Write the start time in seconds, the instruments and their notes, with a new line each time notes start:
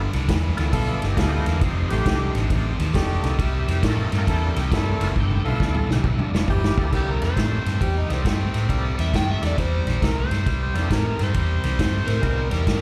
Already playing: overdriven electric guitar G2 D3, tonewheel organ E4 F4 A4
0.13 fingered electric bass C2, overdriven electric guitar G2 D3, snare, ride
0.29 fingered electric bass E2, overdriven electric guitar G2 E3, kick, snare, ride
0.56 fingered electric bass D2, overdriven electric guitar G2 E3, tonewheel organ B3 E4 F4 A4, snare, ride
0.73 fingered electric bass B1, overdriven electric guitar G2 D3, horn section B3 E4 F4 A4, kick, ride
0.99 fingered electric bass G1, overdriven electric guitar G2 D3, tonewheel organ D5, ride
1.03 tonewheel organ G4 D#5, snare
1.17 fingered electric bass D2, overdriven electric guitar G2 E3, horn section B3 E4 F4 A4, tonewheel organ G4 D#5, kick, snare, ride
1.32 tonewheel organ G4 D#5
1.46 fingered electric bass E2, overdriven electric guitar G2 E3, tonewheel organ D4 A#4, snare, ride
1.61 fingered electric bass F1, overdriven electric guitar F2 C3, tonewheel organ D#4 C5, kick, snare, ride
1.76 tonewheel organ D#4 C5
1.88 fingered electric bass A1, overdriven electric guitar F2, horn section A3 G4, tonewheel organ B4, snare, ride
1.92 overdriven electric guitar C3, tonewheel organ C5
2.05 fingered electric bass C2, overdriven electric guitar F2 D3, tonewheel organ A3 D4 D#4 G4, kick, snare, ride
2.35 fingered electric bass A1, overdriven electric guitar F2 D3, snare, ride
2.50 fingered electric bass A1, overdriven electric guitar F2 C3, kick, ride
2.79 fingered electric bass D#2, overdriven electric guitar F2 C3, snare, ride
2.94 fingered electric bass F1, overdriven electric guitar F2 D3, horn section A3 D4 D#4 G4, kick, snare, ride
3.22 fingered electric bass C2, overdriven electric guitar F2 D3, tonewheel organ A#3 D4 E4 A4, snare, ride
3.37 fingered electric bass C2, overdriven electric guitar C3 G3, tonewheel organ D#5, kick, ride
3.41 tonewheel organ G4 E5
3.55 tonewheel organ G4 E5
3.68 fingered electric bass F2, overdriven electric guitar C3 G3, tonewheel organ G4 E5, snare, ride
3.83 fingered electric bass A2, overdriven electric guitar C3 A3, tonewheel organ A#3 D4 E4 A4 A#4 G5, kick, snare, ride
4.00 tonewheel organ A#4 G5
4.12 fingered electric bass G2, overdriven electric guitar C3 A3, tonewheel organ A#4 G5, snare, ride
4.26 fingered electric bass E2, overdriven electric guitar C3 G3, horn section A#3 D4 E4 A4, tonewheel organ F#5, kick, snare, ride
4.30 tonewheel organ G5
4.56 fingered electric bass C2, overdriven electric guitar C3 G3, snare, ride
4.71 fingered electric bass G2, overdriven electric guitar C3 A3, horn section A#3 D4 E4 A4, kick, snare, ride
5.00 fingered electric bass F#1, overdriven electric guitar C3 A3, tonewheel organ B3 E4 F4 A4, snare, ride
5.15 fingered electric bass G1, overdriven electric guitar G2 D3, kick, high tom
5.19 tonewheel organ G5
5.31 high tom
5.44 fingered electric bass B1, overdriven electric guitar G2 D3, horn section B3 E4 F4 A4, tonewheel organ E5, high tom
5.60 fingered electric bass D2, overdriven electric guitar G2 E3, tonewheel organ D5, kick, snare
5.75 tonewheel organ A4, mid tom
5.89 fingered electric bass B1, overdriven electric guitar G2 E3, snare
5.93 tonewheel organ G4
6.04 fingered electric bass B1, overdriven electric guitar G2 D3, tonewheel organ E4, kick, mid tom
6.19 tonewheel organ D4, mid tom
6.32 fingered electric bass F1, overdriven electric guitar G2 D3, snare
6.37 tonewheel organ F3 D4
6.48 fingered electric bass G1, overdriven electric guitar G2 E3, horn section E4 G4, kick, floor tom
6.64 snare
6.77 fingered electric bass D2, overdriven electric guitar G2 E3, tonewheel organ C3 A#3 D4 E4 A4, kick
6.92 fingered electric bass C2, overdriven electric guitar C3 G3, harmonica G4, kick, snare, crash
7.11 harmonica A#4
7.22 fingered electric bass F2, overdriven electric guitar C3 G3, harmonica C5, snare, ride
7.36 fingered electric bass A2, overdriven electric guitar C3 A3, tonewheel organ G3 A#3 D4 E4 A4, kick, snare, ride
7.65 fingered electric bass G2, overdriven electric guitar C3 A3, snare, ride
7.81 fingered electric bass E2, overdriven electric guitar C3 G3, harmonica G4, kick, ride
7.98 harmonica D#4
8.09 fingered electric bass C2, overdriven electric guitar C3 G3, tonewheel organ G3 A#3 D4 E4 A4, snare, ride
8.13 harmonica C4
8.25 fingered electric bass G2, overdriven electric guitar C3 A3, kick, snare, ride
8.53 fingered electric bass A2, overdriven electric guitar C3 A3, snare, ride
8.69 fingered electric bass C2, overdriven electric guitar C3 G3, tonewheel organ G3 A#3 D4 E4 A4, kick, ride
8.97 fingered electric bass E2, overdriven electric guitar C3 G3, electric slide guitar E5, snare, ride
9.13 fingered electric bass G2, overdriven electric guitar C3 A3, electric slide guitar G5, kick, snare, ride
9.31 electric slide guitar E5
9.41 fingered electric bass E2, overdriven electric guitar C3 A3, tonewheel organ G3 A#3 D4 E4 A4, snare, ride
9.47 electric slide guitar D5
9.58 fingered electric bass E2, overdriven electric guitar C3 G3, electric slide guitar C5, kick, snare, ride
9.86 fingered electric bass A#1, overdriven electric guitar C3 G3, snare, ride
10.02 fingered electric bass C2, overdriven electric guitar C3 A3, harmonica A#4, kick, snare, ride
10.20 harmonica C5
10.31 fingered electric bass G2, overdriven electric guitar C3 A3, snare, ride
10.46 fingered electric bass C2, overdriven electric guitar C3 G3, kick, snare, ride
10.63 harmonica C5
10.74 fingered electric bass F2, overdriven electric guitar C3 G3, tonewheel organ G3 A#3 D4 E4 A4, snare, ride
10.78 harmonica C5
10.90 fingered electric bass A2, overdriven electric guitar C3 A3, harmonica A#4, kick, snare, ride
11.08 harmonica A#4
11.19 fingered electric bass G2, overdriven electric guitar C3 A3, snare, ride
11.23 harmonica C5
11.34 fingered electric bass E2, overdriven electric guitar C3 G3, kick, ride
11.63 fingered electric bass C2, overdriven electric guitar C3 G3, snare, ride
11.79 fingered electric bass G2, overdriven electric guitar C3 A3, kick, snare, ride
12.07 fingered electric bass A2, overdriven electric guitar C3 A3, electric slide guitar A#4, snare, ride
12.21 fingered electric bass C2, overdriven electric guitar C3 G3, tonewheel organ G#3 B3 D#4 F4 A#4, kick, ride
12.50 fingered electric bass E2, overdriven electric guitar C3 G3, tonewheel organ G3 A#3 D4 E4 A5, electric slide guitar A#4, snare, ride
12.67 fingered electric bass G2, overdriven electric guitar C3 A3, kick, snare, ride